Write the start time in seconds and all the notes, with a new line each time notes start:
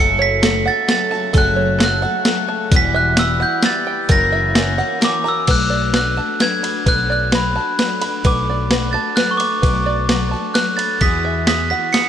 Already playing: F#1 F#2 C#3 F#3 A3 F#4 A4
0.00 C#3 F#3 A3 F#4 A4 C#7
0.19 C#5 B6
0.42 F#3 A3 F#4 A4, snare, closed hi-hat
0.65 A3 F#4 A4 F#5 A6
0.70 F#3
0.88 F#3 A3 F#4 A4 A6, snare, closed hi-hat
1.11 A3 F#4 A4 A5
1.15 F#3
1.33 F#1 F#2 C#3 F#3 A3 F#4 A4, kick, closed hi-hat
1.38 F#6
1.56 C#5
1.79 F#3 A3 A4, snare, closed hi-hat
1.83 F#4 A4 F#6
2.02 F#3 A3 F#4 A4 F#5
2.25 F#3 A3 F#4 A4, snare, closed hi-hat
2.48 A5
2.72 E1 E3 G3 B3 E4 F#4, kick, closed hi-hat
2.76 B6
2.94 E5 F#6
3.17 G3 B3 E4 F#4 E6, snare, closed hi-hat
3.40 B3 E4 F#4 F#5 G6
3.63 G3 B3 E4 F#4 A6, snare, closed hi-hat
3.87 G5
4.09 F#1 F#2 C#3 E3 A#3 C#4 F#4 A#4 A#6, kick, closed hi-hat
4.32 E5
4.55 E3 A#3 C#4 F#4 A#4, snare, closed hi-hat
4.78 E3 A#3 C#4 F#4 F#5
5.01 E3 A#3 C#4 F#4 A#4 D6, snare, closed hi-hat
5.24 A#3 C#4 F#4 A#5
5.28 E3 E6
5.47 B1 B2 F#3 A3 D4 F#4 B4 F#6, kick, crash, ride
5.70 D5
5.93 F#3 A3 D4 B4 F#6, snare, ride
5.97 F#4
6.17 A3 D4 F#4 A5
6.40 F#3 A3 D4 F#4 B4 G#6, snare, ride
6.63 A3 D4 F#4 B5, ride
6.86 B1 B2 F#3 A3 D4 F#4 B4 F#6, kick, ride
7.10 D5 F#6
7.32 F#3 A3 D4 F#4 B4 B5, snare, ride
7.56 D4 F#4 A5
7.60 A3
7.79 F#3 A3 D4 F#4 B4, snare, ride
8.01 A3 D4 F#4 B5, ride
8.24 B1 B2 F#3 A3 D4 F#4 B4 D6, kick, ride
8.49 D5
8.71 F#3 A3 D4 F#4 B4, snare, ride
8.93 D4 F#4 A5 A6
8.97 A3
9.16 F#3 A3 B4 F#6, snare, ride
9.20 D4 F#4
9.31 C#6
9.37 F#4 B5 D6, ride
9.43 A3 D4
9.62 B1 B2 F#3 B4, kick, ride
9.66 A3 D4 F#4
9.86 D5
10.09 F#3 A3 D4 F#4 B4, snare, ride
10.31 D4 F#4 A5
10.37 A3
10.54 F#3 A3 D4 B4 F#6, snare, ride
10.59 F#4
10.77 B5 A6, ride
11.01 E2 E3 G#3 B3 E4 F#4 G#4 B6, kick, ride
11.25 E5
11.47 G#3 B3 E4 F#4 G#4 B6, snare, ride
11.70 B3 E4 F#4 F#5 B6
11.92 G#3 B3 E4 F#4 G#4 C#7, snare, ride